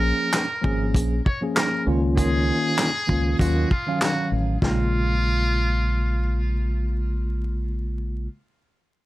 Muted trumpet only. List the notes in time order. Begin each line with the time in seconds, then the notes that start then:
Already playing: A#4
1.25 C#5
1.56 A#4
2.17 G#4
3.39 F#4
3.71 F4
4.01 F#4
4.62 F4